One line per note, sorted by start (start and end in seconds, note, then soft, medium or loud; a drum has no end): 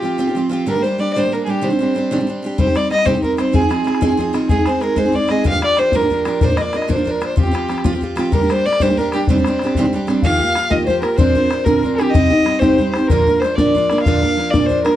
0.00 0.17 F3 soft
0.00 0.18 C4 soft
0.00 0.37 G4 medium
0.04 0.18 F4 medium
0.04 0.19 G4 medium
0.18 0.27 F3 medium
0.18 0.27 C4 medium
0.18 0.28 F4 medium
0.18 0.26 G4 medium
0.27 0.35 C4 soft
0.27 0.36 F4 soft
0.27 0.36 G4 soft
0.35 0.48 F3 medium
0.35 0.50 C4 medium
0.35 0.50 F4 medium
0.35 0.52 G4 medium
0.49 0.66 F3 medium
0.49 0.67 C4 medium
0.49 0.67 F4 medium
0.49 0.67 G4 medium
0.66 0.75 G2 medium
0.66 0.75 D3 medium
0.66 0.75 G3 medium
0.66 0.76 A#3 medium
0.66 0.75 D4 medium
0.66 0.74 G4 medium
0.66 0.84 A#4 medium
0.75 0.82 G3 soft
0.75 0.83 A#3 soft
0.75 0.84 D4 medium
0.75 0.84 G4 soft
0.82 0.97 G3 medium
0.82 0.98 A#3 medium
0.82 0.99 D4 medium
0.82 1.01 C5 medium
0.87 1.00 G4 medium
0.98 1.15 G3 medium
0.98 1.15 A#3 medium
0.98 1.16 D4 medium
0.98 1.16 G4 medium
0.98 1.12 D5 loud
1.13 1.24 G2 medium
1.13 1.24 D3 medium
1.13 1.24 G3 medium
1.13 1.34 C5 loud
1.13 1.17 D5 medium
1.17 1.24 A#3 medium
1.17 1.24 D4 medium
1.17 1.22 G4 medium
1.23 1.30 G3 soft
1.23 1.31 A#3 soft
1.23 1.32 D4 soft
1.23 1.32 G4 soft
1.32 1.45 G3 soft
1.32 1.46 A#3 medium
1.32 1.48 D4 medium
1.32 1.49 G4 medium
1.32 1.44 A#4 medium
1.45 1.61 G3 medium
1.45 1.62 A#3 medium
1.45 1.51 G#4 medium
1.49 1.62 D4 medium
1.49 1.66 G4 medium
1.49 1.63 G4 medium
1.61 1.71 C3 medium
1.61 1.71 D#3 medium
1.61 1.71 G3 medium
1.61 1.71 C4 medium
1.61 1.70 D4 medium
1.61 1.69 G4 medium
1.61 2.28 C5 medium
1.70 1.78 G3 soft
1.70 1.79 C4 soft
1.70 1.80 D4 soft
1.70 1.79 G4 medium
1.79 1.94 G3 medium
1.79 1.95 C4 medium
1.79 1.96 D4 medium
1.79 1.97 G4 medium
1.95 2.11 G3 soft
1.95 2.11 C4 medium
1.95 2.11 D4 soft
1.95 2.12 G4 medium
2.11 2.19 C3 medium
2.11 2.19 D#3 medium
2.11 2.20 G3 medium
2.11 2.19 C4 medium
2.11 2.18 D4 medium
2.11 2.17 G4 medium
2.18 2.26 G3 soft
2.18 2.27 C4 soft
2.18 2.28 D4 soft
2.18 2.27 G4 soft
2.27 2.41 G3 soft
2.27 2.43 C4 soft
2.27 2.43 D4 medium
2.27 2.44 G4 medium
2.42 2.57 G3 medium
2.42 2.58 C4 medium
2.42 2.59 D4 medium
2.42 2.59 G4 medium
2.58 2.67 C3 medium
2.58 2.67 G3 medium
2.58 2.67 C4 medium
2.58 2.68 D#4 medium
2.58 2.66 G4 medium
2.58 2.78 C5 medium
2.58 bodhran medium
2.67 2.75 C4 soft
2.67 2.77 D#4 soft
2.67 2.76 G4 soft
2.75 2.89 G3 medium
2.75 2.91 C4 medium
2.75 2.92 D#4 medium
2.75 2.93 G4 medium
2.75 2.91 D5 medium
2.75 bodhran medium
2.90 3.05 G3 soft
2.90 3.05 C4 medium
2.90 3.06 D#4 medium
2.90 3.07 G4 soft
2.90 3.08 D#5 loud
2.90 bodhran soft
2.99 bodhran soft
3.05 3.14 C3 medium
3.05 3.15 G3 medium
3.05 3.15 C4 medium
3.05 3.15 D#4 medium
3.05 3.13 G4 medium
3.05 3.22 C5 medium
3.05 bodhran medium
3.14 3.22 C4 soft
3.14 3.23 D#4 soft
3.14 3.23 G4 soft
3.22 3.36 G3 soft
3.22 3.37 C4 soft
3.22 3.38 D#4 soft
3.22 3.39 G4 medium
3.22 3.38 A#4 medium
3.22 bodhran soft
3.37 3.52 G3 soft
3.37 3.52 C4 medium
3.37 3.53 D#4 medium
3.37 3.54 G4 medium
3.37 3.56 C5 medium
3.37 bodhran medium
3.52 3.62 F3 medium
3.52 3.62 C4 medium
3.52 3.62 D#4 medium
3.52 3.60 G#4 medium
3.52 4.19 G#4 medium
3.52 bodhran medium
3.61 3.69 C4 soft
3.61 3.70 D#4 soft
3.61 3.71 G#4 soft
3.69 3.83 F3 medium
3.69 3.84 C4 medium
3.69 3.86 D#4 medium
3.69 3.87 G#4 medium
3.69 bodhran medium
3.84 4.00 F3 medium
3.84 4.01 C4 soft
3.84 4.01 D#4 soft
3.84 4.02 G#4 medium
3.84 bodhran medium
3.95 bodhran medium
4.01 4.10 F3 medium
4.01 4.10 C4 medium
4.01 4.09 D#4 medium
4.01 4.07 G#4 medium
4.01 bodhran medium
4.08 4.17 C4 soft
4.08 4.19 D#4 soft
4.08 4.18 G#4 medium
4.17 4.32 F3 medium
4.17 4.32 C4 medium
4.17 4.34 D#4 medium
4.17 4.34 G#4 medium
4.17 bodhran soft
4.33 4.49 F3 medium
4.33 4.49 C4 medium
4.33 4.50 D#4 medium
4.33 4.50 G#4 medium
4.33 bodhran medium
4.49 4.58 G#3 medium
4.49 4.59 C4 medium
4.49 4.58 D#4 medium
4.49 4.69 G#4 medium
4.49 4.56 G#4 medium
4.49 bodhran medium
4.58 4.66 C4 soft
4.58 4.67 D#4 soft
4.58 4.67 G#4 medium
4.66 4.80 G#3 medium
4.66 4.81 C4 medium
4.66 4.82 D#4 medium
4.66 4.82 G#4 medium
4.66 4.83 C5 medium
4.66 bodhran medium
4.81 4.95 G#3 medium
4.81 4.95 C4 medium
4.81 4.96 D#4 medium
4.81 4.97 G#4 medium
4.81 4.99 A#4 medium
4.81 bodhran soft
4.96 5.06 G#3 medium
4.96 5.06 C4 medium
4.96 5.05 D#4 medium
4.96 5.04 G#4 medium
4.96 5.17 C5 medium
4.96 bodhran medium
5.05 5.12 C4 soft
5.05 5.13 D#4 soft
5.05 5.14 G#4 medium
5.12 5.26 G#3 medium
5.12 5.28 C4 medium
5.12 5.30 D#4 medium
5.12 5.30 G#4 medium
5.12 5.32 D5 medium
5.12 bodhran soft
5.28 5.44 G#3 medium
5.28 5.44 C4 medium
5.28 5.45 D#4 medium
5.28 5.45 G#4 medium
5.28 5.46 D#5 medium
5.28 bodhran medium
5.44 5.53 G2 medium
5.44 5.54 D3 medium
5.44 5.54 F3 medium
5.44 5.53 A#3 medium
5.44 5.52 D4 medium
5.44 5.50 G4 medium
5.44 bodhran medium
5.48 5.61 G4 soft
5.48 5.63 F5 loud
5.53 5.60 F3 soft
5.53 5.60 A#3 soft
5.53 5.61 D4 soft
5.61 5.75 F3 medium
5.61 5.76 A#3 medium
5.61 5.78 D4 medium
5.61 5.78 G4 medium
5.61 5.80 D5 loud
5.61 bodhran medium
5.76 5.93 F3 soft
5.76 5.93 A#3 soft
5.76 5.93 D4 medium
5.76 5.94 G4 medium
5.76 5.97 C5 loud
5.76 bodhran medium
5.92 6.02 G2 medium
5.92 6.02 D3 medium
5.92 6.02 F3 medium
5.92 6.02 A#3 medium
5.92 6.01 D4 medium
5.92 6.00 G4 medium
5.92 6.26 A#4 medium
5.92 bodhran medium
6.01 6.09 F3 soft
6.01 6.10 A#3 soft
6.01 6.11 D4 soft
6.01 6.10 G4 soft
6.10 6.24 F3 medium
6.10 6.25 A#3 medium
6.10 6.26 D4 soft
6.10 6.27 G4 medium
6.10 bodhran soft
6.25 6.41 F3 medium
6.25 6.42 A#3 medium
6.25 6.42 D4 medium
6.25 6.43 G4 medium
6.25 6.46 A#4 medium
6.25 bodhran medium
6.41 6.50 A#2 medium
6.41 6.50 D3 medium
6.41 6.50 F3 medium
6.41 6.50 A#3 medium
6.41 6.49 D4 medium
6.41 6.48 A#4 medium
6.41 6.58 C5 medium
6.41 bodhran medium
6.50 6.56 F3 soft
6.50 6.57 A#3 soft
6.50 6.58 D4 soft
6.50 6.58 A#4 soft
6.57 6.72 F3 medium
6.57 6.73 A#3 medium
6.57 6.74 D4 medium
6.57 6.63 D#5 medium
6.57 bodhran medium
6.61 6.75 A#4 medium
6.61 6.78 D5 medium
6.73 6.88 F3 medium
6.73 6.88 A#3 medium
6.73 6.88 D4 medium
6.73 6.89 A#4 medium
6.73 6.91 D#5 medium
6.73 bodhran medium
6.82 bodhran soft
6.88 6.97 A#2 medium
6.88 6.97 D3 medium
6.88 6.97 F3 medium
6.88 6.96 A#3 medium
6.88 6.95 D4 medium
6.88 6.95 A#4 medium
6.88 bodhran medium
6.92 7.05 A#4 soft
6.92 7.12 C5 medium
6.97 7.03 F3 soft
6.97 7.04 A#3 soft
6.97 7.06 D4 soft
7.04 7.19 F3 soft
7.04 7.20 A#3 medium
7.04 7.21 D4 medium
7.04 7.22 A#4 medium
7.04 bodhran soft
7.10 7.24 A#4 medium
7.21 7.35 F3 medium
7.21 7.37 A#3 medium
7.21 7.37 D4 medium
7.21 7.38 A#4 medium
7.21 bodhran medium
7.26 7.38 C5 medium
7.36 7.45 F3 medium
7.36 7.45 C4 medium
7.36 7.44 F4 medium
7.36 7.42 G4 medium
7.36 bodhran medium
7.41 7.99 G4 medium
7.41 7.53 G4 soft
7.45 7.52 C4 soft
7.45 7.52 F4 soft
7.51 7.67 F3 medium
7.51 7.68 C4 medium
7.51 7.69 F4 medium
7.51 7.70 G4 medium
7.51 bodhran medium
7.68 7.83 F3 medium
7.68 7.84 C4 soft
7.68 7.84 F4 medium
7.68 7.85 G4 medium
7.68 bodhran medium
7.78 bodhran medium
7.84 7.93 F3 medium
7.84 7.94 C4 medium
7.84 7.94 F4 loud
7.84 7.91 G4 medium
7.84 bodhran medium
7.93 8.01 C4 soft
7.93 8.02 F4 soft
7.93 8.01 G4 soft
8.01 8.14 F3 medium
8.01 8.16 C4 medium
8.01 8.17 F4 medium
8.01 8.18 G4 medium
8.01 bodhran soft
8.16 8.32 F3 medium
8.16 8.33 C4 medium
8.16 8.33 F4 medium
8.16 8.33 G4 medium
8.16 bodhran medium
8.32 8.41 G2 medium
8.32 8.41 D3 medium
8.32 8.41 G3 medium
8.32 8.41 A#3 medium
8.32 8.41 D4 medium
8.32 8.40 G4 medium
8.32 8.53 A#4 medium
8.32 bodhran medium
8.41 8.48 G3 soft
8.41 8.49 A#3 soft
8.41 8.50 D4 soft
8.41 8.49 G4 medium
8.49 8.65 G3 medium
8.49 8.65 A#3 medium
8.49 8.66 D4 medium
8.49 8.66 G4 medium
8.49 8.67 C5 loud
8.49 bodhran medium
8.66 8.80 G3 medium
8.66 8.81 A#3 medium
8.66 8.81 D4 medium
8.66 8.82 G4 medium
8.66 8.83 D5 loud
8.73 bodhran soft
8.80 8.89 G2 medium
8.80 8.89 D3 medium
8.80 8.89 G3 medium
8.80 8.89 A#3 medium
8.80 8.89 D4 medium
8.80 8.88 G4 medium
8.80 8.99 C5 medium
8.80 bodhran medium
8.89 8.96 G3 soft
8.89 8.97 A#3 soft
8.89 8.98 D4 soft
8.89 8.97 G4 soft
8.97 9.11 G3 medium
8.97 9.12 A#3 medium
8.97 9.13 D4 medium
8.97 9.14 G4 medium
8.97 9.12 A#4 medium
8.97 bodhran soft
9.12 9.28 G3 medium
9.12 9.29 A#3 medium
9.12 9.29 D4 medium
9.12 9.27 G4 medium
9.12 9.29 G4 medium
9.12 bodhran medium
9.27 9.37 C3 medium
9.27 9.37 D#3 medium
9.27 9.37 G3 medium
9.27 9.38 C4 medium
9.27 9.37 D4 medium
9.27 9.35 G4 medium
9.27 9.89 C5 medium
9.27 bodhran medium
9.36 9.44 G3 soft
9.36 9.46 C4 soft
9.36 9.46 D4 soft
9.36 9.45 G4 soft
9.44 9.60 G3 soft
9.44 9.62 C4 medium
9.44 9.62 D4 medium
9.44 9.62 G4 medium
9.44 bodhran medium
9.59 9.77 G3 soft
9.59 9.77 C4 medium
9.59 bodhran medium
9.64 9.77 D4 medium
9.64 9.78 G4 medium
9.64 bodhran medium
9.75 9.85 C3 medium
9.75 9.85 D#3 medium
9.75 9.85 G3 medium
9.75 9.86 C4 medium
9.75 9.84 D4 medium
9.75 bodhran medium
9.79 9.83 G4 medium
9.84 9.92 G3 soft
9.84 9.92 C4 soft
9.84 9.93 D4 medium
9.84 9.93 G4 soft
9.93 10.06 G3 medium
9.93 10.07 C4 medium
9.93 10.08 D4 medium
9.93 10.09 G4 medium
9.93 bodhran soft
10.07 10.23 G3 medium
10.07 10.24 C4 medium
10.07 10.24 D4 medium
10.07 10.24 G4 medium
10.07 bodhran medium
10.22 10.40 D#3 medium
10.22 10.41 F3 medium
10.22 10.41 A#3 medium
10.22 10.40 F4 medium
10.22 10.38 G4 medium
10.22 10.72 F5 medium
10.22 10.72 F5 loud
10.22 bodhran medium
10.40 10.55 A#3 soft
10.40 10.56 F4 soft
10.40 10.56 G4 medium
10.40 bodhran soft
10.55 10.71 F3 medium
10.55 10.69 A#3 medium
10.55 10.69 F4 medium
10.55 10.69 G4 medium
10.55 bodhran medium
10.70 10.89 D#3 medium
10.70 10.86 F3 soft
10.70 10.87 A#3 medium
10.70 10.87 F4 medium
10.70 10.88 G4 medium
10.70 10.89 D#5 medium
10.70 10.86 D#5 medium
10.70 bodhran medium
10.86 11.03 F3 medium
10.86 11.04 A#3 soft
10.86 11.02 F4 soft
10.86 11.01 G4 medium
10.86 11.01 C5 medium
10.86 11.05 C5 medium
10.86 bodhran soft
11.01 11.19 A#3 soft
11.01 11.19 F4 soft
11.01 11.18 G4 medium
11.01 11.18 A#4 medium
11.01 11.20 A#4 medium
11.01 bodhran medium
11.17 11.35 A#2 medium
11.17 11.36 D3 medium
11.17 11.36 F3 medium
11.17 11.36 C4 medium
11.17 11.34 D4 medium
11.17 11.34 A#4 medium
11.17 11.66 C5 loud
11.17 11.65 C5 loud
11.17 bodhran medium
11.35 11.49 F3 soft
11.35 11.50 C4 soft
11.35 11.51 D4 medium
11.35 11.51 A#4 medium
11.35 bodhran soft
11.50 11.66 F3 medium
11.50 11.65 C4 medium
11.50 11.65 D4 medium
11.50 11.65 A#4 medium
11.50 bodhran medium
11.64 11.84 A#2 medium
11.64 11.84 D3 medium
11.64 11.82 F3 medium
11.64 11.83 C4 medium
11.64 11.84 D4 medium
11.64 11.95 A#4 medium
11.64 11.83 A#4 medium
11.64 12.00 A#4 medium
11.64 bodhran medium
11.83 11.99 F3 soft
11.83 12.00 C4 soft
11.83 11.99 D4 medium
11.83 11.97 A#4 medium
11.83 bodhran soft
11.95 12.12 G4 medium
11.95 12.14 G4 medium
11.95 12.14 A#4 medium
12.00 12.14 F3 medium
12.00 12.14 C4 soft
12.00 12.15 D4 medium
12.00 bodhran medium
12.11 12.31 C3 medium
12.11 12.60 D#5 loud
12.11 bodhran medium
12.15 12.32 G3 medium
12.15 12.32 C4 medium
12.15 12.30 D#4 medium
12.15 12.29 G4 medium
12.15 12.64 D#5 medium
12.30 12.45 C4 soft
12.30 12.45 D#4 medium
12.30 12.46 G4 medium
12.30 bodhran soft
12.44 12.61 G3 medium
12.44 12.61 C4 medium
12.44 12.61 D#4 medium
12.44 12.60 G4 medium
12.44 bodhran medium
12.59 12.78 C4 medium
12.59 12.79 D#4 medium
12.59 12.79 G4 medium
12.59 12.91 C5 medium
12.59 12.95 C5 medium
12.59 bodhran medium
12.63 12.80 C3 medium
12.63 12.77 G3 medium
12.78 12.94 G3 medium
12.78 12.95 C4 medium
12.78 12.96 D#4 medium
12.78 12.94 G4 soft
12.78 bodhran soft
12.91 13.09 C5 medium
12.91 bodhran medium
12.95 13.11 C4 soft
12.95 13.11 D#4 soft
12.95 13.11 G4 soft
12.95 13.12 C5 medium
13.08 13.27 A#2 medium
13.08 13.27 D3 medium
13.08 13.28 F3 medium
13.08 13.28 A#3 medium
13.08 13.26 D4 medium
13.08 13.41 A#4 medium
13.08 13.43 A#4 medium
13.08 bodhran medium
13.12 13.25 A#4 medium
13.26 13.41 F3 soft
13.26 13.43 A#3 soft
13.26 13.43 D4 soft
13.26 13.42 A#4 medium
13.26 bodhran soft
13.40 13.58 F3 medium
13.40 13.57 C5 medium
13.40 13.58 C5 medium
13.40 bodhran medium
13.44 13.58 A#3 medium
13.44 13.57 D4 medium
13.44 13.57 A#4 medium
13.56 13.73 F3 medium
13.56 13.75 A#3 medium
13.56 13.75 D4 medium
13.56 13.75 A#4 medium
13.56 14.02 D5 medium
13.56 14.05 D5 medium
13.56 bodhran medium
13.60 13.76 A#2 medium
13.60 13.76 D3 medium
13.74 13.90 F3 medium
13.74 13.91 A#3 medium
13.74 13.90 D4 soft
13.74 13.89 A#4 medium
13.74 bodhran soft
13.90 14.06 F3 soft
13.90 14.06 A#3 medium
13.90 14.06 D4 soft
13.90 14.06 A#4 medium
13.90 bodhran medium
13.98 bodhran medium
14.02 14.23 A#2 medium
14.02 14.52 F5 loud
14.02 14.55 F5 medium
14.02 bodhran medium
14.07 14.23 D3 medium
14.07 14.23 F3 medium
14.07 14.23 A#3 medium
14.07 14.22 D4 medium
14.07 14.21 A#4 medium
14.22 14.36 F3 soft
14.22 14.37 A#3 soft
14.22 14.38 D4 medium
14.22 14.38 A#4 medium
14.22 bodhran soft
14.37 14.53 F3 medium
14.37 14.54 A#3 medium
14.37 14.53 D4 medium
14.37 14.52 A#4 medium
14.51 14.70 D4 medium
14.51 14.70 A#4 medium
14.51 14.68 D5 medium
14.51 14.87 D5 medium
14.51 bodhran medium
14.55 14.71 A#2 medium
14.55 14.72 D3 soft
14.55 14.68 F3 medium
14.55 14.69 A#3 medium
14.66 14.85 F3 medium
14.66 14.83 C5 medium
14.70 14.86 A#3 medium
14.70 14.85 D4 medium
14.70 14.83 A#4 medium
14.70 bodhran soft
14.84 14.96 F3 soft
14.84 14.96 A#3 medium
14.84 14.96 D4 medium
14.84 14.96 A#4 medium
14.84 bodhran medium